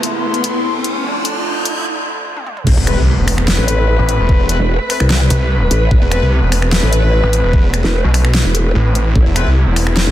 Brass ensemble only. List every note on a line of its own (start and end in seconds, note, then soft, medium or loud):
2.87 3.00 A3 loud
2.87 3.00 C4 medium
2.87 3.00 B4 loud
3.28 4.47 A3 medium
3.28 4.47 C4 medium
3.28 4.47 B4 loud
4.49 4.57 A3 loud
4.49 4.57 C4 medium
4.49 4.57 B4 loud
4.90 4.98 A3 loud
4.90 4.98 C4 medium
4.90 4.98 B4 loud
6.12 6.24 A3 loud
6.12 6.24 C4 medium
6.12 6.24 B4 loud
6.52 7.71 A3 medium
6.52 7.71 C4 medium
6.52 7.71 B4 loud
9.36 9.49 A3 loud
9.36 9.49 C4 medium
9.36 9.49 B4 loud
9.76 10.11 A3 medium
9.76 10.11 C4 medium
9.76 10.11 B4 loud